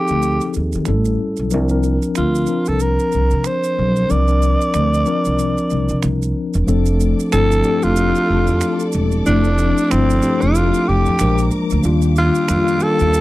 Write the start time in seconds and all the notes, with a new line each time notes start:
Already playing: F3 C4 D#4 G4 G#4 A4
0.08 D2, maracas
0.22 maracas
0.41 maracas
0.54 D#2, maracas
0.72 D#3, maracas
0.85 A1 G3 C#4 E4 A4, finger snap, maracas
1.05 maracas
1.37 B1, maracas
1.50 C2 F3 C4 D4 A#4, maracas
1.69 F3 C4 D4 A#4, maracas
1.83 maracas
2.02 maracas
2.15 D2 F4, finger snap, maracas
2.35 maracas
2.46 F3 C4 D4 A#4, maracas
2.66 C2 A4, maracas
2.80 A#4, maracas
2.99 maracas
3.12 C2, maracas
3.30 C3, maracas
3.44 C5, finger snap, maracas
3.64 maracas
3.79 B1
3.96 maracas
4.08 C2 F3 C4 D4 A#4 D5, maracas
4.27 F3 C4 D4 A#4, maracas
4.42 maracas
4.61 maracas
4.74 D2, finger snap, maracas
4.94 maracas
5.06 F3 C4 D4 A#4, maracas
5.25 C2, maracas
5.39 maracas
5.58 maracas
5.70 C2, maracas
5.89 C3, maracas
6.03 C2, finger snap, maracas
6.22 maracas
6.54 E1, maracas
6.66 F1 F3 A3 C4 D4 A4 D5 D6, maracas
6.86 maracas
7.00 maracas
7.20 maracas
7.31 G1 F3 A3 C4 D4 E4 A4, finger snap, maracas
7.51 maracas
7.63 F3 A3 C4 D4 G4, maracas
7.71 A4
7.82 F1 F4, maracas
7.96 maracas
8.15 maracas
8.30 F1
8.47 F2, maracas
8.61 finger snap, maracas
8.80 maracas
8.92 E1, maracas
9.12 maracas
9.25 F1 F3 A3 C4 D4 E4, maracas
9.44 maracas
9.58 maracas
9.78 maracas
9.90 G1 F3 A3 C4 D4 E4, finger snap, maracas
10.10 maracas
10.21 F3 A3 C4 D4 G4, maracas
10.30 A4
10.41 F1 F4, maracas
10.55 maracas
10.74 maracas
10.88 F1 G4
11.06 F2, maracas
11.18 A#1 F3 G#3 A#3 D4 A#4 A#5, finger snap, maracas
11.38 maracas
11.51 maracas
11.70 D2, maracas
11.83 D#2 D#3 G3 A#3 D4 F4 G4 F5, maracas
12.02 maracas
12.16 F4, maracas
12.35 maracas
12.48 F2 D#3 G3 A#3 D4 F4, finger snap, maracas
12.68 maracas
12.80 D#3 G3 A#3 D4 F4 A4, maracas
12.99 D#2, maracas
13.14 maracas